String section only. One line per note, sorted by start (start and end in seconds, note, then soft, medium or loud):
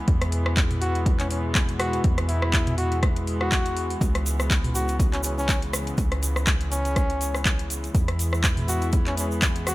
0.00 7.91 E3 medium
0.00 7.91 G#3 medium
0.00 7.91 B3 medium
0.08 3.97 B2 medium
4.01 7.91 C#3 medium
7.95 9.75 E3 medium
7.95 9.75 G#3 medium
7.95 9.75 B3 medium
7.95 9.75 E4 medium